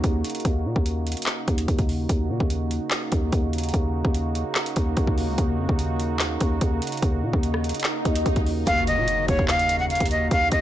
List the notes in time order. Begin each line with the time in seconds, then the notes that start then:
Already playing: C#3 A#3 D#4 F#4
0.04 D#2, kick, closed hi-hat
0.24 closed hi-hat
0.30 closed hi-hat
0.35 closed hi-hat
0.40 closed hi-hat
0.45 D#2, kick, closed hi-hat
0.65 A#2
0.76 D#2, kick
0.86 closed hi-hat
1.07 closed hi-hat
1.12 closed hi-hat
1.17 closed hi-hat
1.22 closed hi-hat
1.26 snare, clap, closed hi-hat
1.48 D#2, kick, closed hi-hat
1.58 closed hi-hat
1.68 D#2, kick, closed hi-hat
1.79 kick, closed hi-hat
1.89 open hi-hat
2.09 D#2 C#3 A#3 F#4, kick, closed hi-hat
2.30 A#2
2.40 D#2, kick
2.50 closed hi-hat
2.71 closed hi-hat
2.91 snare, clap, closed hi-hat
3.12 D#2, kick, closed hi-hat
3.32 D#2, kick, closed hi-hat
3.53 closed hi-hat
3.58 closed hi-hat
3.63 closed hi-hat
3.69 closed hi-hat
3.74 D#2, kick, closed hi-hat
4.05 D#2, kick
4.14 closed hi-hat
4.35 closed hi-hat
4.55 snare, clap, closed hi-hat
4.66 closed hi-hat
4.76 D#2, kick, closed hi-hat
4.97 D#2, kick, closed hi-hat
5.07 kick
5.18 open hi-hat
5.28 C#2
5.38 D#2, kick, closed hi-hat
5.59 F2
5.69 D#2, kick
5.79 closed hi-hat
6.00 closed hi-hat
6.20 snare, clap, closed hi-hat
6.41 D#2, kick, closed hi-hat
6.61 D#2, kick, closed hi-hat
6.82 closed hi-hat
6.87 closed hi-hat
6.92 closed hi-hat
6.97 closed hi-hat
7.02 D#2, kick, closed hi-hat, swell
7.23 A#2
7.33 D#2, kick
7.43 closed hi-hat
7.54 cross-stick
7.64 closed hi-hat
7.69 closed hi-hat
7.74 closed hi-hat
7.80 closed hi-hat
7.84 snare, clap, closed hi-hat
8.05 D#2, kick, closed hi-hat
8.16 closed hi-hat
8.26 D#2, kick, closed hi-hat
8.36 kick, closed hi-hat
8.46 open hi-hat
8.67 D#2 C#3 A#3 D#4 F#4 F5, kick, closed hi-hat, impact
8.87 D#5, closed hi-hat
8.98 A#2
9.08 closed hi-hat
9.28 D#2 C#5, kick, closed hi-hat
9.39 D#2, kick
9.48 F5, snare, clap, closed hi-hat
9.59 closed hi-hat
9.69 closed hi-hat
9.80 F#5
9.90 F5, closed hi-hat
9.95 closed hi-hat
10.00 D#2, kick, closed hi-hat
10.06 closed hi-hat
10.11 D#5, closed hi-hat
10.31 D#2 F5, kick, closed hi-hat
10.52 D#2 D#5, kick, closed hi-hat